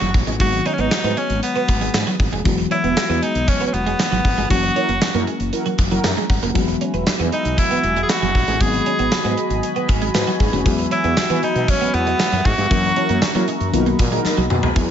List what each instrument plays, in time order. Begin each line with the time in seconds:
Already playing: fm electric piano E3 F#3 G#3 B3 F#4, tenor saxophone F#4
0.01 fretless electric bass F#1, clean electric guitar F#3, closed hi-hat
0.14 fretless electric bass A#1, muted clean electric guitar stroke, kick, open hi-hat
0.27 fretless electric bass A1, clean electric guitar G#3, closed hi-hat
0.39 fretless electric bass G#1, fm electric piano D#3 F#3 G#3 B3 F#4, tenor saxophone F#4, kick, closed hi-hat
0.53 muted clean electric guitar stroke, closed hi-hat
0.66 clean electric guitar C#4, tenor saxophone D#4, closed hi-hat
0.73 tenor saxophone C#4
0.78 fretless electric bass G#1, clean electric guitar B3, tenor saxophone D#4, closed hi-hat
0.91 muted clean electric guitar stroke, snare, tambourine
1.04 fretless electric bass G#2, clean electric guitar B3, closed hi-hat
1.17 clean electric guitar G#3, tenor saxophone C#4, closed hi-hat
1.30 fretless electric bass G#1, closed hi-hat
1.43 tenor saxophone B3, closed hi-hat
1.56 clean electric guitar B3, closed hi-hat
1.68 fretless electric bass G#1, muted clean electric guitar stroke, kick, closed hi-hat
1.81 clean electric guitar G#3, closed hi-hat
1.94 fretless electric bass G#2, snare, tambourine
2.07 clean electric guitar F#3, closed hi-hat
2.20 fretless electric bass G#1, muted clean electric guitar stroke, kick, open hi-hat
2.32 fretless electric bass F1, clean electric guitar G#3, closed hi-hat
2.44 fretless electric bass E1, fm electric piano E3 F#3 G#3 B3 F#4, kick, closed hi-hat
2.58 muted clean electric guitar stroke, closed hi-hat
2.71 clean electric guitar C#4, tenor saxophone E4, closed hi-hat
2.84 fretless electric bass E1, clean electric guitar B3, closed hi-hat
2.97 muted clean electric guitar stroke, snare, tambourine
3.09 fretless electric bass E2, clean electric guitar B3, closed hi-hat
3.22 clean electric guitar G#3, tenor saxophone D#4, closed hi-hat
3.35 fretless electric bass B1, closed hi-hat
3.48 tenor saxophone C#4, kick, closed hi-hat
3.61 clean electric guitar B3, closed hi-hat
3.67 tenor saxophone C#4
3.73 fretless electric bass E1, tenor saxophone B3, muted clean electric guitar stroke, closed hi-hat
3.86 clean electric guitar G#3, closed hi-hat
3.99 snare, tambourine
4.12 fretless electric bass G#1, clean electric guitar F#3, closed hi-hat
4.25 fretless electric bass G#1, muted clean electric guitar stroke, kick, open hi-hat
4.38 fretless electric bass G1, clean electric guitar G#3, closed hi-hat
4.49 fretless electric bass F#1, fm electric piano E3 F#3 A#3 C#4 F#4, tenor saxophone F#4, kick, closed hi-hat
4.63 muted clean electric guitar stroke, closed hi-hat
4.76 clean electric guitar C#4, analog polysynth E4 F#4 A#4, closed hi-hat
4.89 fretless electric bass F#1, clean electric guitar A#3, closed hi-hat
5.01 muted fretless electric bass stroke, muted clean electric guitar stroke, snare, tambourine
5.14 fretless electric bass F#2, clean electric guitar A#3, analog polysynth E4 F#4 A#4, closed hi-hat
5.27 clean electric guitar G#3, closed hi-hat
5.40 fretless electric bass F#1, closed hi-hat
5.53 analog polysynth E4 F#4 A#4, closed hi-hat
5.66 clean electric guitar F#3, closed hi-hat
5.78 fretless electric bass F#1, muted clean electric guitar stroke, kick, closed hi-hat
5.91 clean electric guitar F#3, analog polysynth E4 F#4 A#4, closed hi-hat
6.04 fretless electric bass F#2, fm electric piano A#5, snare, tambourine
6.17 clean electric guitar G#3, closed hi-hat
6.30 fretless electric bass G#1, fm electric piano F#5, muted clean electric guitar stroke, kick, open hi-hat
6.42 fretless electric bass F1, clean electric guitar A#3, closed hi-hat
6.54 fretless electric bass E1, fm electric piano E3 F#3 G#3 B3 F#4, analog synth pad F#4 E5 G#5 B5, kick, closed hi-hat
6.68 muted clean electric guitar stroke, closed hi-hat
6.81 clean electric guitar C#4, closed hi-hat
6.94 fretless electric bass E1, clean electric guitar B3, closed hi-hat
7.06 muted clean electric guitar stroke, snare, tambourine
7.19 fretless electric bass E2, clean electric guitar B3, closed hi-hat
7.32 clean electric guitar G#3, tenor saxophone D#4, closed hi-hat
7.45 fretless electric bass B1, closed hi-hat
7.58 tenor saxophone E4, kick, closed hi-hat
7.71 clean electric guitar B3, closed hi-hat
7.84 fretless electric bass E1, muted clean electric guitar stroke, closed hi-hat
7.96 clean electric guitar G#3, closed hi-hat
8.03 tenor saxophone G#4
8.09 tenor saxophone F#4, snare, tambourine
8.22 fretless electric bass F#1, clean electric guitar F#3, closed hi-hat
8.35 fretless electric bass A#1, muted clean electric guitar stroke, kick, open hi-hat
8.48 fretless electric bass A1, clean electric guitar G#3, closed hi-hat
8.59 fretless electric bass G#1, fm electric piano D#3 F#3 G#3 B3 F#4, analog synth pad F#4 D#5, tenor saxophone G#4, kick, closed hi-hat
8.73 muted clean electric guitar stroke, closed hi-hat
8.86 clean electric guitar C#4, closed hi-hat
8.99 fretless electric bass G#1, clean electric guitar B3, closed hi-hat
9.11 muted clean electric guitar stroke, snare, tambourine
9.24 fretless electric bass G#2, clean electric guitar B3, closed hi-hat
9.37 clean electric guitar G#3, closed hi-hat
9.50 fretless electric bass G#1, closed hi-hat
9.63 closed hi-hat
9.76 clean electric guitar B3, closed hi-hat
9.89 fretless electric bass G#1, muted clean electric guitar stroke, kick, closed hi-hat
10.02 clean electric guitar G#3, closed hi-hat
10.14 fretless electric bass G#2, fm electric piano F#4 B4, snare, tambourine
10.27 clean electric guitar F#3, closed hi-hat
10.40 fretless electric bass G#1, fm electric piano D#4 G#4, muted clean electric guitar stroke, kick, open hi-hat
10.53 fretless electric bass F1, clean electric guitar G#3, fm electric piano C#4 F#4, closed hi-hat
10.64 fretless electric bass E2, fm electric piano E3 F#3 G#3 B3 F#4, analog synth pad E5, kick, closed hi-hat
10.78 muted clean electric guitar stroke, closed hi-hat
10.91 clean electric guitar C#4, tenor saxophone E4, closed hi-hat
11.04 fretless electric bass E2, clean electric guitar B3, closed hi-hat
11.17 muted clean electric guitar stroke, muted fretless electric bass stroke, snare, tambourine
11.30 fretless electric bass E3, clean electric guitar B3, closed hi-hat
11.43 clean electric guitar G#3, tenor saxophone D#4, closed hi-hat
11.55 fretless electric bass B2, closed hi-hat
11.68 tenor saxophone C#4, kick, closed hi-hat
11.81 clean electric guitar B3, closed hi-hat
11.94 fretless electric bass E2, tenor saxophone B3, muted clean electric guitar stroke, closed hi-hat
12.07 clean electric guitar G#3, closed hi-hat
12.19 snare, tambourine
12.32 fretless electric bass F#2, clean electric guitar F#3, closed hi-hat
12.45 fretless electric bass G#2, tenor saxophone F#4, muted clean electric guitar stroke, kick, open hi-hat
12.58 fretless electric bass G2, clean electric guitar G#3, closed hi-hat
12.70 fretless electric bass F#2, fm electric piano E3 F#3 A#3 C#4 F#4, analog synth pad A#5 C#6, kick, closed hi-hat
12.83 muted clean electric guitar stroke, closed hi-hat
12.96 clean electric guitar C#4, analog polysynth E4 F#4 A#4, closed hi-hat
13.09 fretless electric bass F#2, clean electric guitar A#3, closed hi-hat
13.22 muted fretless electric bass stroke, muted clean electric guitar stroke, snare, tambourine
13.35 fretless electric bass F#3, clean electric guitar A#3, analog polysynth E4 F#4 A#4, closed hi-hat
13.48 clean electric guitar G#3, closed hi-hat
13.61 fretless electric bass F#2, closed hi-hat
13.72 fretless electric bass B1, fm electric piano D#3 F#3 A#3 B3 F4, analog polysynth D#4 F#4 A#4, analog synth pad D#5 B5, closed hi-hat
13.81 fm electric piano F#4
13.86 clean electric guitar A#3, closed hi-hat
13.99 fretless electric bass A#2, muted clean electric guitar stroke, kick, closed hi-hat
14.12 clean electric guitar G#3, analog polysynth D#4 F#4 A#4, closed hi-hat
14.25 muted fretless electric bass stroke, snare
14.38 fretless electric bass B1, clean electric guitar F#3
14.50 fretless electric bass B2, muted clean electric guitar stroke, mid tom
14.63 clean electric guitar G#3, floor tom
14.75 fretless electric bass E2, fm electric piano F#3 B3 E4 G#4, clean electric guitar G#3, analog synth pad G#4 E5 F#5 B5, kick, closed hi-hat